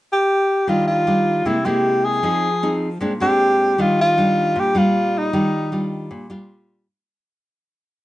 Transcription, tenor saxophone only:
0, 0, Header, 1, 2, 480
1, 0, Start_track
1, 0, Key_signature, -3, "major"
1, 0, Tempo, 387597
1, 841, Time_signature, 4, 2, 24, 8
1, 9965, End_track
2, 0, Start_track
2, 0, Title_t, "Tenor saxophone"
2, 0, Program_c, 0, 66
2, 154, Note_on_c, 0, 67, 86
2, 852, Note_on_c, 0, 65, 76
2, 871, Note_off_c, 0, 67, 0
2, 1075, Note_off_c, 0, 65, 0
2, 1082, Note_on_c, 0, 65, 86
2, 1817, Note_on_c, 0, 64, 80
2, 1836, Note_off_c, 0, 65, 0
2, 2046, Note_on_c, 0, 67, 95
2, 2065, Note_off_c, 0, 64, 0
2, 2537, Note_on_c, 0, 68, 91
2, 2555, Note_off_c, 0, 67, 0
2, 3486, Note_off_c, 0, 68, 0
2, 3984, Note_on_c, 0, 67, 100
2, 4717, Note_on_c, 0, 65, 84
2, 4736, Note_off_c, 0, 67, 0
2, 4937, Note_off_c, 0, 65, 0
2, 4969, Note_on_c, 0, 65, 95
2, 5689, Note_on_c, 0, 67, 91
2, 5708, Note_off_c, 0, 65, 0
2, 5914, Note_on_c, 0, 65, 90
2, 5933, Note_off_c, 0, 67, 0
2, 6416, Note_on_c, 0, 63, 74
2, 6435, Note_off_c, 0, 65, 0
2, 7350, Note_off_c, 0, 63, 0
2, 9965, End_track
0, 0, End_of_file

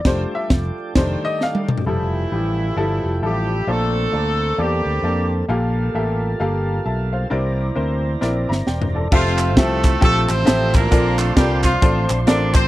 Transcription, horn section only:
0, 0, Header, 1, 2, 480
1, 0, Start_track
1, 0, Key_signature, -1, "major"
1, 0, Tempo, 452489
1, 55, Time_signature, 4, 2, 24, 8
1, 13449, End_track
2, 0, Start_track
2, 0, Title_t, "Horn section"
2, 0, Program_c, 0, 61
2, 1975, Note_on_c, 0, 57, 52
2, 1977, Note_on_c, 0, 55, 55
2, 1980, Note_on_c, 0, 52, 67
2, 1980, Note_on_c, 0, 64, 73
2, 3377, Note_off_c, 0, 57, 0
2, 3378, Note_off_c, 0, 55, 0
2, 3379, Note_off_c, 0, 52, 0
2, 3379, Note_off_c, 0, 64, 0
2, 3431, Note_on_c, 0, 64, 57
2, 3432, Note_on_c, 0, 60, 55
2, 3440, Note_on_c, 0, 55, 70
2, 3440, Note_on_c, 0, 67, 76
2, 3874, Note_off_c, 0, 60, 0
2, 3874, Note_off_c, 0, 64, 0
2, 3911, Note_on_c, 0, 62, 68
2, 3912, Note_off_c, 0, 55, 0
2, 3912, Note_off_c, 0, 67, 0
2, 3913, Note_on_c, 0, 60, 62
2, 3926, Note_on_c, 0, 57, 83
2, 3926, Note_on_c, 0, 69, 90
2, 4828, Note_off_c, 0, 60, 0
2, 4828, Note_off_c, 0, 62, 0
2, 4869, Note_on_c, 0, 60, 57
2, 4870, Note_on_c, 0, 62, 57
2, 4874, Note_on_c, 0, 55, 75
2, 4874, Note_on_c, 0, 67, 81
2, 4877, Note_off_c, 0, 57, 0
2, 4877, Note_off_c, 0, 69, 0
2, 5642, Note_off_c, 0, 55, 0
2, 5642, Note_off_c, 0, 67, 0
2, 5788, Note_off_c, 0, 60, 0
2, 5788, Note_off_c, 0, 62, 0
2, 9668, Note_on_c, 0, 57, 65
2, 9670, Note_on_c, 0, 60, 62
2, 9689, Note_on_c, 0, 53, 85
2, 9689, Note_on_c, 0, 65, 92
2, 10127, Note_off_c, 0, 53, 0
2, 10127, Note_off_c, 0, 65, 0
2, 10141, Note_off_c, 0, 60, 0
2, 10154, Note_on_c, 0, 60, 72
2, 10157, Note_on_c, 0, 64, 65
2, 10168, Note_off_c, 0, 57, 0
2, 10168, Note_on_c, 0, 57, 91
2, 10168, Note_on_c, 0, 69, 99
2, 10630, Note_off_c, 0, 60, 0
2, 10630, Note_off_c, 0, 64, 0
2, 10632, Note_off_c, 0, 57, 0
2, 10632, Note_off_c, 0, 69, 0
2, 10643, Note_on_c, 0, 60, 81
2, 10643, Note_on_c, 0, 64, 81
2, 10644, Note_on_c, 0, 57, 104
2, 10644, Note_on_c, 0, 69, 113
2, 10906, Note_off_c, 0, 57, 0
2, 10906, Note_off_c, 0, 69, 0
2, 10915, Note_off_c, 0, 64, 0
2, 10926, Note_off_c, 0, 60, 0
2, 10926, Note_on_c, 0, 60, 99
2, 10926, Note_on_c, 0, 72, 107
2, 10927, Note_on_c, 0, 64, 73
2, 10927, Note_on_c, 0, 69, 79
2, 11400, Note_off_c, 0, 60, 0
2, 11400, Note_off_c, 0, 72, 0
2, 11404, Note_on_c, 0, 62, 83
2, 11405, Note_on_c, 0, 58, 95
2, 11405, Note_on_c, 0, 70, 104
2, 11407, Note_on_c, 0, 65, 78
2, 11547, Note_off_c, 0, 69, 0
2, 11548, Note_off_c, 0, 64, 0
2, 11871, Note_on_c, 0, 57, 83
2, 11871, Note_on_c, 0, 69, 90
2, 11878, Note_off_c, 0, 58, 0
2, 11878, Note_off_c, 0, 70, 0
2, 12050, Note_on_c, 0, 55, 83
2, 12050, Note_on_c, 0, 67, 91
2, 12062, Note_off_c, 0, 57, 0
2, 12062, Note_off_c, 0, 69, 0
2, 12312, Note_off_c, 0, 62, 0
2, 12314, Note_off_c, 0, 65, 0
2, 12324, Note_off_c, 0, 55, 0
2, 12324, Note_off_c, 0, 67, 0
2, 12342, Note_on_c, 0, 53, 76
2, 12342, Note_on_c, 0, 65, 83
2, 12344, Note_on_c, 0, 57, 58
2, 12345, Note_on_c, 0, 62, 73
2, 12790, Note_off_c, 0, 53, 0
2, 12790, Note_off_c, 0, 65, 0
2, 13021, Note_off_c, 0, 62, 0
2, 13021, Note_on_c, 0, 62, 93
2, 13021, Note_on_c, 0, 74, 101
2, 13259, Note_off_c, 0, 57, 0
2, 13287, Note_off_c, 0, 62, 0
2, 13287, Note_off_c, 0, 74, 0
2, 13311, Note_on_c, 0, 60, 91
2, 13311, Note_on_c, 0, 72, 99
2, 13449, Note_off_c, 0, 60, 0
2, 13449, Note_off_c, 0, 72, 0
2, 13449, End_track
0, 0, End_of_file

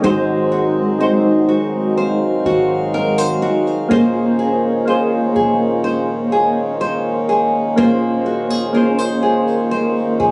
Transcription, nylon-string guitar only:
0, 0, Header, 1, 2, 480
1, 0, Start_track
1, 0, Key_signature, -5, "minor"
1, 0, Tempo, 967742
1, 18, Time_signature, 4, 2, 24, 8
1, 5116, End_track
2, 0, Start_track
2, 0, Title_t, "Nylon-string guitar"
2, 0, Program_c, 0, 24
2, 0, Note_on_c, 0, 61, 61
2, 0, Note_on_c, 0, 67, 73
2, 18, Note_on_c, 0, 56, 82
2, 21, Note_on_c, 0, 72, 73
2, 66, Note_off_c, 0, 61, 0
2, 66, Note_off_c, 0, 67, 0
2, 257, Note_on_c, 0, 66, 64
2, 496, Note_off_c, 0, 72, 0
2, 498, Note_on_c, 0, 72, 67
2, 731, Note_off_c, 0, 66, 0
2, 737, Note_on_c, 0, 66, 62
2, 978, Note_off_c, 0, 72, 0
2, 980, Note_on_c, 0, 72, 71
2, 1214, Note_off_c, 0, 66, 0
2, 1220, Note_on_c, 0, 66, 64
2, 1457, Note_off_c, 0, 72, 0
2, 1459, Note_on_c, 0, 70, 70
2, 1578, Note_off_c, 0, 70, 0
2, 1578, Note_on_c, 0, 72, 57
2, 1691, Note_off_c, 0, 66, 0
2, 1697, Note_on_c, 0, 66, 60
2, 1936, Note_off_c, 0, 72, 0
2, 1937, Note_off_c, 0, 56, 0
2, 1939, Note_on_c, 0, 58, 87
2, 1942, Note_on_c, 0, 72, 71
2, 1986, Note_off_c, 0, 66, 0
2, 2177, Note_on_c, 0, 68, 65
2, 2412, Note_off_c, 0, 72, 0
2, 2418, Note_on_c, 0, 72, 69
2, 2651, Note_off_c, 0, 68, 0
2, 2657, Note_on_c, 0, 68, 61
2, 2891, Note_off_c, 0, 72, 0
2, 2896, Note_on_c, 0, 72, 71
2, 3130, Note_off_c, 0, 68, 0
2, 3136, Note_on_c, 0, 68, 66
2, 3371, Note_off_c, 0, 72, 0
2, 3377, Note_on_c, 0, 72, 73
2, 3610, Note_off_c, 0, 68, 0
2, 3616, Note_on_c, 0, 68, 61
2, 3851, Note_off_c, 0, 58, 0
2, 3854, Note_off_c, 0, 72, 0
2, 3857, Note_on_c, 0, 58, 89
2, 3860, Note_on_c, 0, 72, 75
2, 4094, Note_off_c, 0, 68, 0
2, 4096, Note_on_c, 0, 66, 62
2, 4217, Note_off_c, 0, 66, 0
2, 4217, Note_on_c, 0, 68, 56
2, 4336, Note_off_c, 0, 72, 0
2, 4338, Note_on_c, 0, 70, 70
2, 4456, Note_off_c, 0, 70, 0
2, 4456, Note_on_c, 0, 72, 59
2, 4570, Note_off_c, 0, 68, 0
2, 4576, Note_on_c, 0, 68, 64
2, 4812, Note_off_c, 0, 72, 0
2, 4818, Note_on_c, 0, 72, 74
2, 5052, Note_off_c, 0, 68, 0
2, 5058, Note_on_c, 0, 68, 64
2, 5116, Note_off_c, 0, 58, 0
2, 5116, Note_off_c, 0, 68, 0
2, 5116, Note_off_c, 0, 72, 0
2, 5116, End_track
0, 0, End_of_file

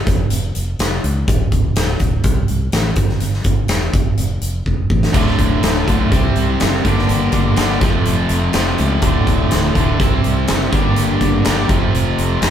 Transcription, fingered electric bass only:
0, 0, Header, 1, 2, 480
1, 0, Start_track
1, 0, Tempo, 484653
1, 1272, Time_signature, 4, 2, 24, 8
1, 12381, End_track
2, 0, Start_track
2, 0, Title_t, "Fingered electric bass"
2, 0, Program_c, 0, 33
2, 75, Note_on_c, 0, 29, 81
2, 256, Note_off_c, 0, 29, 0
2, 310, Note_on_c, 0, 29, 89
2, 493, Note_off_c, 0, 29, 0
2, 559, Note_on_c, 0, 29, 80
2, 739, Note_off_c, 0, 29, 0
2, 784, Note_on_c, 0, 29, 93
2, 970, Note_off_c, 0, 29, 0
2, 1031, Note_on_c, 0, 37, 94
2, 1214, Note_off_c, 0, 37, 0
2, 1275, Note_on_c, 0, 26, 89
2, 1457, Note_off_c, 0, 26, 0
2, 1506, Note_on_c, 0, 26, 92
2, 1691, Note_off_c, 0, 26, 0
2, 1750, Note_on_c, 0, 26, 90
2, 1934, Note_off_c, 0, 26, 0
2, 1987, Note_on_c, 0, 26, 86
2, 2172, Note_off_c, 0, 26, 0
2, 2225, Note_on_c, 0, 36, 78
2, 2411, Note_off_c, 0, 36, 0
2, 2480, Note_on_c, 0, 36, 81
2, 2660, Note_off_c, 0, 36, 0
2, 2705, Note_on_c, 0, 33, 85
2, 2890, Note_off_c, 0, 33, 0
2, 2937, Note_on_c, 0, 31, 97
2, 3126, Note_off_c, 0, 31, 0
2, 3184, Note_on_c, 0, 31, 83
2, 3370, Note_off_c, 0, 31, 0
2, 3424, Note_on_c, 0, 31, 95
2, 3610, Note_off_c, 0, 31, 0
2, 3662, Note_on_c, 0, 28, 89
2, 3849, Note_off_c, 0, 28, 0
2, 3902, Note_on_c, 0, 29, 83
2, 4089, Note_off_c, 0, 29, 0
2, 4139, Note_on_c, 0, 29, 79
2, 4328, Note_off_c, 0, 29, 0
2, 4380, Note_on_c, 0, 29, 77
2, 4568, Note_off_c, 0, 29, 0
2, 4621, Note_on_c, 0, 29, 88
2, 4808, Note_off_c, 0, 29, 0
2, 4856, Note_on_c, 0, 33, 91
2, 5045, Note_off_c, 0, 33, 0
2, 5096, Note_on_c, 0, 26, 83
2, 5285, Note_off_c, 0, 26, 0
2, 5337, Note_on_c, 0, 26, 94
2, 5526, Note_off_c, 0, 26, 0
2, 5585, Note_on_c, 0, 26, 93
2, 5771, Note_off_c, 0, 26, 0
2, 5825, Note_on_c, 0, 35, 90
2, 6011, Note_off_c, 0, 35, 0
2, 6061, Note_on_c, 0, 36, 84
2, 6248, Note_off_c, 0, 36, 0
2, 6304, Note_on_c, 0, 36, 84
2, 6490, Note_off_c, 0, 36, 0
2, 6564, Note_on_c, 0, 30, 91
2, 6742, Note_off_c, 0, 30, 0
2, 6784, Note_on_c, 0, 31, 90
2, 6970, Note_off_c, 0, 31, 0
2, 7026, Note_on_c, 0, 31, 92
2, 7211, Note_off_c, 0, 31, 0
2, 7262, Note_on_c, 0, 31, 89
2, 7448, Note_off_c, 0, 31, 0
2, 7506, Note_on_c, 0, 31, 92
2, 7741, Note_off_c, 0, 31, 0
2, 7741, Note_on_c, 0, 29, 87
2, 7928, Note_off_c, 0, 29, 0
2, 7989, Note_on_c, 0, 29, 81
2, 8173, Note_off_c, 0, 29, 0
2, 8220, Note_on_c, 0, 29, 89
2, 8407, Note_off_c, 0, 29, 0
2, 8464, Note_on_c, 0, 29, 92
2, 8650, Note_off_c, 0, 29, 0
2, 8710, Note_on_c, 0, 37, 92
2, 8893, Note_off_c, 0, 37, 0
2, 8935, Note_on_c, 0, 26, 95
2, 9124, Note_off_c, 0, 26, 0
2, 9182, Note_on_c, 0, 26, 86
2, 9368, Note_off_c, 0, 26, 0
2, 9449, Note_on_c, 0, 26, 99
2, 9624, Note_off_c, 0, 26, 0
2, 9663, Note_on_c, 0, 26, 86
2, 9848, Note_off_c, 0, 26, 0
2, 9906, Note_on_c, 0, 36, 89
2, 10090, Note_off_c, 0, 36, 0
2, 10167, Note_on_c, 0, 36, 79
2, 10343, Note_off_c, 0, 36, 0
2, 10406, Note_on_c, 0, 30, 87
2, 10582, Note_off_c, 0, 30, 0
2, 10628, Note_on_c, 0, 31, 92
2, 10811, Note_off_c, 0, 31, 0
2, 10876, Note_on_c, 0, 31, 80
2, 11056, Note_off_c, 0, 31, 0
2, 11104, Note_on_c, 0, 31, 92
2, 11288, Note_off_c, 0, 31, 0
2, 11358, Note_on_c, 0, 31, 87
2, 11537, Note_off_c, 0, 31, 0
2, 11583, Note_on_c, 0, 29, 83
2, 11768, Note_off_c, 0, 29, 0
2, 11831, Note_on_c, 0, 29, 90
2, 12012, Note_off_c, 0, 29, 0
2, 12072, Note_on_c, 0, 29, 77
2, 12253, Note_off_c, 0, 29, 0
2, 12301, Note_on_c, 0, 29, 90
2, 12381, Note_off_c, 0, 29, 0
2, 12381, End_track
0, 0, End_of_file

